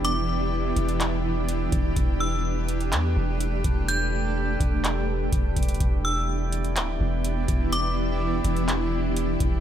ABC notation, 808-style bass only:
X:1
M:4/4
L:1/8
Q:1/4=125
K:Em
V:1 name="808-style bass" clef=bass
E,,,3 E,,,4 E,,, | E,,,4 E,, E,,,2 E,,,- | E,,,3 E,,,3 E,,, E,,, | E,,,4 D,,, E,,,2 E,,,- |
E,,,3 E,,,4 E,,, |]